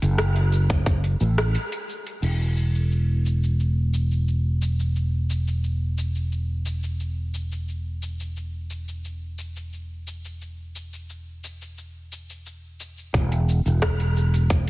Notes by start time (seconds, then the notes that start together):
0.02 F#1, closed hi-hat, cabasa
0.18 cross-stick, closed hi-hat, cabasa
0.36 closed hi-hat
0.52 cabasa
0.70 kick, closed hi-hat, cabasa
0.86 kick, closed hi-hat, cabasa
1.04 closed hi-hat
1.20 A1, cabasa
1.38 cross-stick, closed hi-hat, cabasa
1.55 closed hi-hat, cabasa
1.72 closed hi-hat
1.89 cabasa
2.07 closed hi-hat, cabasa
2.22 E1, crash, cabasa
2.57 cabasa
2.75 cabasa
2.91 cabasa
3.26 cabasa
3.43 cabasa
3.60 cabasa
3.94 cabasa
4.12 cabasa
4.28 cabasa
4.62 cabasa
4.80 cabasa
4.96 cabasa
5.30 cabasa
5.48 cabasa
5.64 cabasa
5.98 cabasa
6.15 cabasa
6.32 cabasa
6.66 cabasa
6.83 cabasa
7.00 cabasa
7.34 cabasa
7.52 cabasa
7.68 cabasa
8.02 cabasa
8.20 cabasa
8.37 cabasa
8.70 cabasa
8.88 cabasa
9.05 cabasa
9.39 cabasa
9.56 cabasa
9.73 cabasa
10.07 cabasa
10.25 cabasa
10.41 cabasa
10.76 cabasa
10.93 cabasa
11.10 cabasa
11.44 cabasa
11.62 cabasa
11.78 cabasa
12.12 cabasa
12.30 cabasa
12.46 cabasa
12.80 cabasa
12.98 cabasa
13.14 E1, kick, closed hi-hat, cabasa
13.32 closed hi-hat
13.49 cabasa
13.66 E1, cabasa
13.82 kick, cross-stick, closed hi-hat, cabasa
14.00 closed hi-hat
14.16 cabasa
14.34 closed hi-hat, cabasa
14.50 kick, closed hi-hat, cabasa